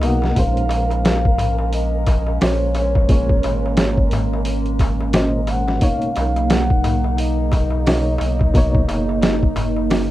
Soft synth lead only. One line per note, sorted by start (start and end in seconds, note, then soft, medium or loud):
0.05 0.40 F#5 loud
0.39 1.05 F5 loud
1.06 1.69 F5 loud
1.73 2.37 D#5 loud
2.42 2.73 C#5 medium
2.77 4.09 C#5 medium
5.15 5.51 D#5 loud
5.50 5.85 F#5 loud
5.84 6.53 F5 loud
6.51 7.19 F#5 loud
7.20 10.11 D#5 loud